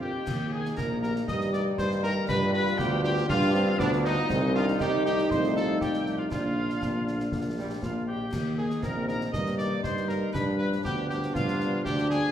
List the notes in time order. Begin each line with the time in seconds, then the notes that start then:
Already playing: F2 F4
0.01 D4 F4 G4 A#4 G5
0.15 D#4
0.27 D#2 D#3 D#4, concert bass drum, snare, crash
0.51 A#3 D#4 G4 G#4 G#5
0.65 snare
0.76 A#1 A#3 A#4 A#5, concert bass drum, snare
1.02 A#3 D#4 G4 A#4 A#5, snare
1.16 snare
1.27 G2 G3 D#5 D#6, concert bass drum, snare
1.41 snare
1.52 A#3 D#4 G4 D5 D6, snare
1.78 G2 C5 C6, concert bass drum, snare
1.91 snare
2.02 A#3 D#4 G4 A#4 A#5, snare
2.28 G2 D3 F4 B4 B5, concert bass drum, snare, crash
2.53 G3 D4 F4 B4 B5
2.67 snare
2.78 D2 B3 G4 G5, concert bass drum, snare
3.04 G3 D4 F4 G4 G5, snare
3.17 snare
3.27 G2 D4 F4 F5, concert bass drum, snare
3.42 snare
3.53 G3 C4 D4 F4, snare
3.79 D2 B3 D4 D5, concert bass drum, snare
3.93 snare
4.04 G3 D4 D#4 F4 D#5, snare
4.29 C2 D#3 G3 C4 D#4, concert bass drum, snare, crash
4.55 D4 F4 F5
4.68 snare
4.80 C2 G3 C4 D#4 G4 G5, concert bass drum, snare
5.05 G4 G5, snare
5.18 snare
5.30 C2 F3 A3 D#4 C5 C6, concert bass drum, snare
5.44 snare
5.56 A4 A5, snare
5.81 C2 G4 G5, concert bass drum, snare
5.94 snare
6.06 snare
6.18 F4 F5
6.31 A#1 F3 A#3 D4 F4 F5, concert bass drum, snare, crash
6.70 snare
6.81 A#1 C3, concert bass drum, snare
7.07 D3, snare
7.20 snare
7.31 A#1 D3, concert bass drum, snare
7.57 G3
7.81 A#1 F3 A#3 D4 F4 F5, concert bass drum, snare
8.07 D#3 G4 G5
8.33 D#2 D#3 D#4, concert bass drum, snare, crash
8.57 D#3 A#3 D#4 G#4 G#5
8.70 snare
8.83 A#1 C4 A#4 A#5, concert bass drum, snare
9.07 D#3 A#3 D#4 A#4 A#5, snare
9.21 snare
9.32 G2 A#3 D#5 D#6, concert bass drum, snare
9.46 snare
9.58 D#3 A#3 D#4 D5 D6, snare
9.82 G2 D#4 C5 C6, concert bass drum, snare
9.97 snare
10.08 D#3 A#3 D#4 A#4 A#5, snare
10.33 G2 F3 D4 B4 B5, concert bass drum, snare, crash
10.58 F3 G3 D4 B4 B5
10.72 snare
10.84 D2 B3 G4 G5, concert bass drum, snare
11.09 F3 G3 D4 G4 G5, snare
11.23 snare
11.34 G2 F4 F5, concert bass drum, snare
11.48 snare
11.59 F3 G3 D4, snare
11.84 D2 D4 G4 G5, concert bass drum, snare
11.98 snare
12.10 F3 G3 D4 G#4 G#5, snare